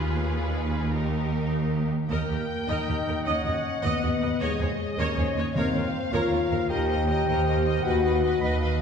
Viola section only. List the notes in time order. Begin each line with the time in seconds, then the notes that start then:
Already playing: F4
0.93 D#4
2.11 A#4
2.31 A#4
2.69 A#4
2.89 A#4
3.08 A#4
3.26 D#5
3.47 D#5
3.85 D#5
4.04 D#5
4.22 D#5
4.41 C#5
4.61 C#5
4.99 C#5
5.18 C#5
5.38 C#5
5.57 A#4
5.76 A#4
6.14 A#4
6.33 A#4
6.51 A#4
6.70 A#4
6.90 A#4
7.09 A#4
7.28 A#4
7.48 A#4
7.67 A#4
7.86 B4
8.04 B4
8.24 B4
8.43 B4
8.62 B4